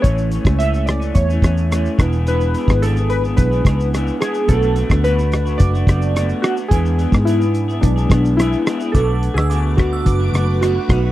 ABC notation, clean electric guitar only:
X:1
M:4/4
L:1/16
Q:1/4=108
K:Bdor
V:1 name="Clean electric guitar"
[A,,E,A,C]2 [A,,E,A,C]2 [A,,E,A,C] [E,A,C]2 [E,A,C]2 [E,A,C] [A,,E,A,C]2 [A,,E,A,C]2 [E,B,DG] [B,DG] | [E,B,DG]2 [E,B,DG]2 [E,B,DG] [B,DG]2 [B,DG]2 [B,DG] [E,B,DG]2 [E,B,DG]2 [E,B,DG] [B,DG] | [B,,A,DF]2 [B,,A,DF]2 [B,,A,DF] [A,DF]2 [A,DF]2 [A,DF] [B,,A,DF]2 [B,,A,DF]2 [B,,A,DF] [A,DF] | [E,B,DG]2 [E,B,DG]2 [E,B,DG] [B,DG]2 [B,DG]2 [B,DG] [E,B,DG]2 [E,B,DG]2 [E,B,DG] [B,DG] |
[B,,A,DF] [A,DF]3 [B,,A,DF]2 [B,,A,DF]3 [A,DF] [B,,A,DF]2 [B,,A,DF] [A,DF] [B,,A,^DF] [A,DF] |]